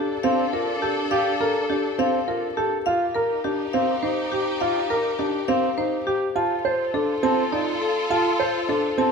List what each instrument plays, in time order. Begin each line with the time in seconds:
Already playing: grand piano D4, string section D4 A4, marimba G4
0.23 grand piano C4, marimba F5
0.53 grand piano F4, marimba A#4
0.82 marimba G4, grand piano A4
1.11 grand piano G4, marimba F5
1.41 marimba A4, grand piano A#4
1.70 grand piano D4, marimba G4
1.99 grand piano C4, marimba F5
2.28 grand piano F4, marimba A#4
2.57 marimba G4, grand piano A4
2.86 string section D#4 G4, grand piano F4, marimba F5
3.15 marimba A#4, grand piano A#4
3.44 grand piano D4, marimba G4
3.73 grand piano C4, marimba F5
4.03 grand piano D#4, marimba C5
4.32 marimba G4, grand piano G4
4.60 grand piano F4, marimba F5
4.90 marimba A#4, grand piano A#4
5.19 grand piano D4, marimba G4
5.48 grand piano C4, marimba F5
5.78 grand piano D#4, marimba C5
6.07 grand piano G4, marimba G4
6.36 grand piano F4, string section F4 A4, marimba A5
6.65 grand piano C5, marimba C5
6.94 grand piano D4, marimba A4
7.23 grand piano C4, marimba A5
7.52 grand piano D#4, marimba D5
7.82 marimba A4
8.10 grand piano F4, marimba A5
8.40 grand piano C5, marimba C5
8.69 grand piano D4, marimba A4
8.98 grand piano C4, marimba A5